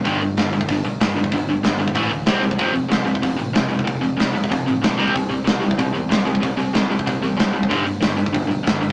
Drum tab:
HH |o-o-o-o-o-o-o-o-|o-o-o-o-o-o-o-o-|o-o-o-o-o-o-o-o-|o-o-o-o-o-o-o-o-|
SD |----o-------o---|----o-------o---|----o-------o---|----o-------o---|
BD |o------oo------o|o------oo------o|o------oo------o|o------oo------o|

HH |o-o-o-o-o-o-o-o-|o-o-o-o-o-o-o-o-|o-o-o-o-o-o-o-o-|
SD |----o-------o---|----o-------o---|----o-------o---|
BD |o------oo------o|o------oo------o|o------oo-------|